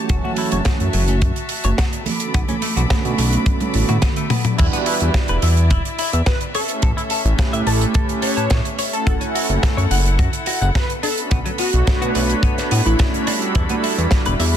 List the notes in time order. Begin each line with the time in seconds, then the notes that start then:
Already playing: E3 F#3 A3 C#4 F#4 A5
0.09 F#1 F#4 E5, kick, closed hi-hat
0.24 F#4, high conga
0.36 E4, open hi-hat
0.52 F#1 E3 F#3 A3 C#4 F#4 C#5, closed hi-hat
0.65 F#4, kick, snare, closed hi-hat, high conga
0.80 F#2, closed hi-hat
0.93 F#1 F#3, open hi-hat
1.08 C#4, closed hi-hat, high conga
1.22 F#2, kick, closed hi-hat, muted conga
1.36 closed hi-hat
1.49 open hi-hat
1.64 F#1 C#5, closed hi-hat, high conga
1.78 F#4, kick, snare, closed hi-hat
1.93 closed hi-hat
2.06 A4 B5 D6, open hi-hat, high conga, low conga
2.20 D3 A3 B3 C#4 F#4, closed hi-hat
2.34 B1 B3, kick, closed hi-hat
2.48 C#4, closed hi-hat, high conga, low conga
2.62 A3, open hi-hat
2.76 B1 D3 A3 B3 C#4 F#4, closed hi-hat, low conga
2.90 B3, kick, snare, closed hi-hat, high conga
3.05 B2, closed hi-hat
3.18 B1 B2, open hi-hat, muted conga
3.33 F#3, closed hi-hat, high conga
3.46 kick, closed hi-hat, high tom
3.60 closed hi-hat, high tom, muted conga
3.74 A1 D3 A3 B3 C#4 F#4, open hi-hat
3.89 A2 F#4, closed hi-hat, mid tom, high conga
4.02 B3, kick, snare, closed hi-hat, mid tom
4.16 A3, closed hi-hat
4.30 B3, mid tom, open hi-hat, muted conga, high conga
4.44 E3 G3 B3 D4 F#4, closed hi-hat, mid tom
4.57 E2 G3 D4 E4 F#4 B4 D5 E5, kick, closed hi-hat, crash
4.73 B3, closed hi-hat
4.86 E4, open hi-hat
5.00 E2 G3 D4 E4 F#4 B4, closed hi-hat
5.14 kick, snare, closed hi-hat
5.28 E1 B4, closed hi-hat
5.42 E2 E5, open hi-hat
5.57 closed hi-hat
5.70 E1 E4, kick, closed hi-hat
5.85 closed hi-hat
5.99 E4, open hi-hat
6.13 E2 E5, closed hi-hat
6.26 B4, kick, snare, closed hi-hat
6.41 closed hi-hat
6.54 C#4 A4 C#5, open hi-hat
6.69 A3 C#4 E4 G4 B4, closed hi-hat
6.82 A1 A4, kick, closed hi-hat
6.97 E4, closed hi-hat
7.10 A4, open hi-hat
7.24 A1 A3 C#4 E4 G4 B4, closed hi-hat
7.39 kick, snare, closed hi-hat
7.53 A2 E5, closed hi-hat
7.67 A1 A4 A5, open hi-hat
7.81 closed hi-hat
7.94 A4, kick, closed hi-hat
8.09 closed hi-hat
8.22 A3 C#4 E4 G4 A4 B4 C#5, open hi-hat
8.37 A2 A5, closed hi-hat
8.50 A2, kick, snare, closed hi-hat
8.65 closed hi-hat
8.79 C#5, open hi-hat
8.92 A3 C#4 E4 F#4 A4, closed hi-hat
9.07 F#1 E4 F#4 A4 F#5, kick, closed hi-hat
9.21 C#4, closed hi-hat
9.35 F#4, open hi-hat
9.49 F#1 A3 C#4 E4 F#4 A4, closed hi-hat
9.63 kick, snare, closed hi-hat
9.77 F#2 C#5, closed hi-hat
9.91 F#1 F#5, open hi-hat
10.06 closed hi-hat
10.19 F#2 F#4, kick, closed hi-hat
10.33 closed hi-hat
10.46 F#4, open hi-hat
10.61 F#1 F#5, closed hi-hat
10.75 B4, kick, snare, closed hi-hat
10.90 closed hi-hat
11.03 B3 D4 A4 B5, open hi-hat
11.17 A3 C#4 D4 F#4 B4, closed hi-hat
11.31 B1 B3, kick, closed hi-hat
11.46 F#3, closed hi-hat
11.58 B3 F#4, open hi-hat
11.73 B1 A3 D4 F#4 B4 C#5, closed hi-hat
11.87 kick, snare, closed hi-hat
12.02 B2 F#4, closed hi-hat
12.15 B1 B4, open hi-hat
12.30 closed hi-hat
12.43 B3, kick, closed hi-hat
12.58 snare, closed hi-hat
12.71 A2 B3, open hi-hat
12.85 A1 A3 C#4 D4 E4 F#4 B4 C#5, closed hi-hat
12.99 kick, snare, closed hi-hat
13.14 closed hi-hat
13.27 G3 D4 E4 F#4 A4, open hi-hat
13.42 closed hi-hat
13.55 E2 G3 E4, kick, closed hi-hat
13.69 B3, closed hi-hat, high conga
13.83 E4, open hi-hat, muted conga
13.97 E2 G3 D4 E4 F#4 B4, closed hi-hat
14.11 kick, snare, closed hi-hat, muted conga, high conga
14.25 E1 B4, closed hi-hat
14.40 E2 E5, open hi-hat
14.54 muted conga